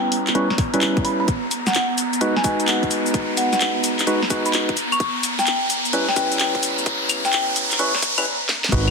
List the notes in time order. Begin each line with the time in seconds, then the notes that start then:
Already playing: G3 B3 C#4 E4 B4 A#5, riser
0.12 open hi-hat
0.27 clap, closed hi-hat
0.35 G3 C#4 E4 B4 C#6, closed hi-hat
0.50 snare
0.58 kick, snare, open hi-hat
0.74 G3 C#4 E4 B4, closed hi-hat
0.81 clap, closed hi-hat
0.97 kick, closed hi-hat
1.05 B5, open hi-hat
1.20 B5
1.28 kick, closed hi-hat, cabasa
1.51 open hi-hat, cabasa
1.67 F#5, snare, cabasa
1.74 F#5, clap, closed hi-hat, cabasa
1.98 open hi-hat, cabasa
2.13 closed hi-hat, cabasa
2.21 G#3 D#4 F#4 B4, closed hi-hat, cabasa
2.36 G#5, snare
2.44 G#3 D#4 F#4 B4 G#5, kick, open hi-hat, cabasa
2.60 closed hi-hat, cabasa
2.68 F#5, clap, closed hi-hat, cabasa
2.83 kick, closed hi-hat
2.91 open hi-hat, cabasa
3.06 cabasa
3.14 kick, closed hi-hat, cabasa
3.37 F#5, open hi-hat, cabasa
3.53 F#5, snare, cabasa
3.61 clap, closed hi-hat, cabasa
3.84 open hi-hat, cabasa
3.99 clap, closed hi-hat, cabasa
4.07 G#3 D#4 F#4 B4, closed hi-hat, cabasa
4.22 snare
4.30 G#3 D#4 F#4 B4, kick, open hi-hat, cabasa
4.46 B5, closed hi-hat, cabasa
4.53 clap, closed hi-hat, cabasa
4.69 kick, closed hi-hat
4.77 open hi-hat, cabasa
4.92 C#6, cabasa, claves
5.00 kick, closed hi-hat, cabasa
5.23 open hi-hat, cabasa
5.39 G5, snare, cabasa
5.47 clap, closed hi-hat, cabasa
5.70 open hi-hat, cabasa
5.85 closed hi-hat, cabasa
5.93 G3 C#4 E4 B4, closed hi-hat, cabasa
6.08 G5, snare
6.16 G3 C#4 E4 B4, kick, open hi-hat, cabasa
6.32 closed hi-hat, cabasa
6.40 G5, clap, closed hi-hat, cabasa
6.55 kick, closed hi-hat
6.63 open hi-hat, cabasa
6.78 cabasa
6.86 kick, closed hi-hat, cabasa
7.09 open hi-hat, cabasa, claves
7.25 G5, snare, cabasa
7.33 clap, closed hi-hat, cabasa
7.56 open hi-hat, cabasa
7.71 clap, closed hi-hat, cabasa
7.79 G3 C#4 E4 B4 C#6, closed hi-hat, cabasa
7.95 snare
8.02 kick, snare, open hi-hat, cabasa
8.18 G3 C#4 E4 B4, closed hi-hat, cabasa, claves
8.49 snare
8.64 snare
8.72 G#1 G#3 B3 D#4 F#4 B4, kick, closed hi-hat, crash, downlifter, cabasa